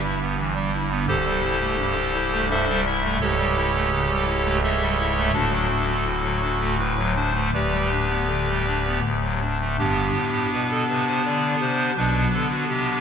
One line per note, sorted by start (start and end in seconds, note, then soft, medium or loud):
0.00 1.06 G1 medium
0.00 1.06 G2 medium
0.04 0.19 E4 medium
0.22 0.37 B3 medium
0.37 0.53 E3 medium
0.55 0.71 G3 medium
0.73 0.89 E4 medium
0.91 1.06 B3 medium
1.08 3.17 C1 medium
1.08 3.17 C2 medium
1.08 2.46 G4 medium
1.08 2.46 A4 medium
1.08 2.46 C5 loud
1.25 1.41 G3 medium
1.43 1.59 E4 medium
1.60 1.77 A3 medium
1.78 1.94 G2 medium
1.95 2.12 G3 medium
2.14 2.30 E4 medium
2.32 2.48 A3 medium
2.50 2.66 G2 medium
2.50 2.81 A4 medium
2.50 2.81 C5 loud
2.50 2.81 E5 loud
2.69 2.84 G3 medium
2.87 3.02 E4 medium
2.87 3.16 E5 loud
3.04 3.19 A3 medium
3.21 5.29 C#1 medium
3.21 5.29 C#2 medium
3.21 4.58 G4 loud
3.21 4.58 A4 loud
3.21 4.58 C#5 loud
3.38 3.54 G3 medium
3.55 3.72 E4 medium
3.74 3.90 A3 medium
3.92 4.07 C#3 medium
4.10 4.25 G3 medium
4.27 4.42 E4 medium
4.45 4.61 A3 medium
4.63 4.79 C#3 medium
4.63 5.31 A4 medium
4.63 5.32 C#5 medium
4.63 5.32 E5 loud
4.81 4.96 G3 medium
4.98 5.14 E4 medium
5.17 5.32 A3 medium
5.33 7.50 D1 medium
5.33 7.50 D2 medium
5.33 5.67 D4 medium
5.33 6.75 F#4 medium
5.33 6.75 A4 loud
5.51 5.67 F#3 medium
5.69 5.86 D4 medium
5.88 6.04 A3 medium
6.06 6.22 A2 medium
6.24 6.40 F#3 medium
6.42 6.59 D4 medium
6.61 6.77 A3 medium
6.79 6.96 A2 medium
6.79 7.11 B4 loud
6.97 7.14 F#3 medium
7.15 7.32 D4 medium
7.15 7.48 C5 loud
7.34 7.51 A3 medium
7.53 9.00 D1 medium
7.53 9.00 D2 medium
7.53 9.00 G4 medium
7.53 9.00 B4 medium
7.53 9.00 D5 loud
7.72 7.89 G3 medium
7.91 8.08 D4 medium
8.10 8.27 B3 medium
8.29 8.46 D3 medium
8.49 8.65 G3 medium
8.67 8.84 D4 medium
8.86 9.02 B3 medium
9.04 9.77 D1 medium
9.04 9.77 D2 medium
9.24 9.40 F#3 medium
9.41 9.58 D4 medium
9.61 9.77 A3 medium
9.79 10.10 G1 medium
9.79 10.10 G2 medium
9.79 11.93 B3 medium
9.79 11.92 D4 soft
9.79 10.50 G4 medium
10.16 10.47 A2 medium
10.53 10.83 B2 medium
10.53 10.68 B4 loud
10.71 10.86 A4 medium
10.88 11.19 C3 medium
10.88 11.04 B4 medium
11.07 11.22 C5 medium
11.25 11.56 D3 medium
11.25 11.56 D5 medium
11.61 11.91 C3 medium
11.61 11.91 C5 medium
11.97 12.28 B1 medium
11.97 12.27 B2 medium
11.97 13.01 B3 soft
11.97 13.01 D4 medium
11.97 12.27 B4 loud
12.34 12.64 D3 medium
12.34 12.48 A4 medium
12.51 12.66 F#4 medium
12.69 12.99 C3 medium
12.69 13.01 G4 medium